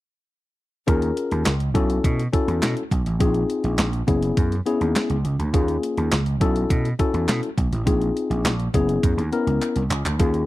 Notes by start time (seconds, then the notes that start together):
0.87 D#2 C#4 F4 G#4 A#4, kick, closed hi-hat
1.02 closed hi-hat
1.17 closed hi-hat
1.31 D#2, closed hi-hat
1.46 C#2, snare, clap, closed hi-hat
1.60 closed hi-hat
1.74 B1 C#4 E4 F#4 A4, kick, closed hi-hat
1.90 closed hi-hat
2.04 B2, kick, closed hi-hat
2.19 closed hi-hat
2.33 C#4 E4 F#4 A4, kick, closed hi-hat
2.48 E2, closed hi-hat
2.62 B2, snare, clap, closed hi-hat
2.77 closed hi-hat
2.91 B1, kick, closed hi-hat
3.06 A1, closed hi-hat
3.20 A#1 C4 D4 F4 G#4, kick, closed hi-hat
3.26 D#4
3.34 closed hi-hat
3.50 closed hi-hat
3.64 A#1, closed hi-hat
3.79 A#1, snare, clap, closed hi-hat
3.93 closed hi-hat
4.07 F#1 B3 C#4 E4 G#4, kick, closed hi-hat
4.22 closed hi-hat
4.37 F#2, kick, closed hi-hat
4.52 closed hi-hat
4.66 B3 C#4 E4 G#4, closed hi-hat
4.81 D#2, closed hi-hat
4.96 snare, clap, closed hi-hat
5.10 C#2, closed hi-hat
5.25 C#2, closed hi-hat
5.39 D2, closed hi-hat
5.54 D#2 A#3 C#4 F4 G#4, kick, closed hi-hat
5.68 closed hi-hat
5.83 closed hi-hat
5.97 D#2, closed hi-hat
6.12 C#2, snare, clap, closed hi-hat
6.26 closed hi-hat
6.41 B1 C#4 E4 F#4 A4, kick, closed hi-hat
6.56 closed hi-hat
6.70 B2, kick, closed hi-hat
6.85 closed hi-hat
6.99 C#4 E4 F#4 A4, kick, closed hi-hat
7.14 E2, closed hi-hat
7.28 B2, snare, clap, closed hi-hat
7.43 closed hi-hat
7.58 B1, kick, closed hi-hat
7.72 A1, closed hi-hat
7.86 A#1 C4 D#4 F4 G#4, kick, closed hi-hat
8.01 closed hi-hat
8.17 closed hi-hat
8.30 A#1, closed hi-hat
8.45 A#1, snare, clap, closed hi-hat
8.60 closed hi-hat
8.74 F#1 B3 C#4 E4 G#4, kick, closed hi-hat
8.89 closed hi-hat
9.03 F#2, kick, closed hi-hat
9.17 D#2, closed hi-hat
9.32 B3 C#4 E4 A#4, closed hi-hat
9.47 C#2, closed hi-hat
9.62 clap, closed hi-hat
9.76 C2, closed hi-hat
9.90 C#2, clap, closed hi-hat
10.05 D2, clap, closed hi-hat
10.19 D#2 A#3 C#4 F4 G#4, kick, closed hi-hat
10.34 closed hi-hat